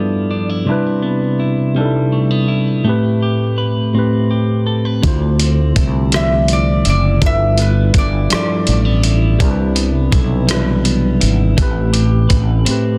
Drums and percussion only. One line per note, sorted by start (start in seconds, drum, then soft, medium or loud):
5.03 kick medium
5.03 closed hi-hat medium
5.40 closed hi-hat soft
5.76 kick medium
5.76 closed hi-hat soft
6.12 cross-stick medium
6.12 closed hi-hat medium
6.48 closed hi-hat soft
6.85 closed hi-hat medium
7.22 kick loud
7.22 closed hi-hat medium
7.58 closed hi-hat soft
7.94 kick medium
7.94 closed hi-hat medium
8.30 cross-stick medium
8.30 closed hi-hat medium
8.67 closed hi-hat soft
9.04 closed hi-hat soft
9.40 kick medium
9.40 closed hi-hat medium
9.76 closed hi-hat soft
10.12 kick medium
10.12 closed hi-hat medium
10.49 cross-stick medium
10.49 closed hi-hat medium
10.85 closed hi-hat medium
11.21 closed hi-hat medium
11.58 kick loud
11.58 closed hi-hat medium
11.94 closed hi-hat soft
12.30 kick medium
12.30 closed hi-hat soft
12.66 closed hi-hat medium